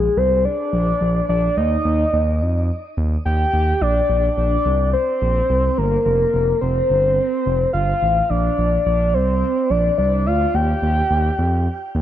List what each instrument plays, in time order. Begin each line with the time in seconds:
Already playing: soft synth lead G#4
0.17 analog synth bass C2, soft synth lead C5
0.45 soft synth lead D5
0.73 analog synth bass A#1
1.01 analog synth bass A#1
1.29 analog synth bass A#1, soft synth lead D5
1.57 analog synth bass D#2, soft synth lead D#5
1.85 analog synth bass D#2
2.13 analog synth bass D#2
2.41 analog synth bass F2
2.97 analog synth bass D#2
3.25 analog synth bass D#2, soft synth lead G5
3.54 analog synth bass D#2
3.81 analog synth bass A#1, soft synth lead D5
4.10 analog synth bass A#1
4.38 analog synth bass A#1, soft synth lead D5
4.66 analog synth bass C2
4.93 soft synth lead C5
5.22 analog synth bass A#1
5.50 analog synth bass C2
5.78 analog synth bass G1, soft synth lead A#4
6.05 analog synth bass F1, soft synth lead A#4
6.34 analog synth bass F1
6.61 analog synth bass F1, soft synth lead C5
6.90 analog synth bass G1
7.46 analog synth bass F1
7.73 analog synth bass G1, soft synth lead F5
8.02 analog synth bass A1
8.29 analog synth bass A#1, soft synth lead D5
8.58 analog synth bass A#1
8.86 analog synth bass A#1, soft synth lead D5
9.14 analog synth bass C2, soft synth lead C5
9.70 analog synth bass A#1, soft synth lead D5
9.98 analog synth bass C2, soft synth lead D5
10.26 analog synth bass D2, soft synth lead F5
10.54 analog synth bass D#2, soft synth lead G5
10.82 analog synth bass D#2
11.11 analog synth bass D#2
11.39 analog synth bass F2
11.95 analog synth bass D#2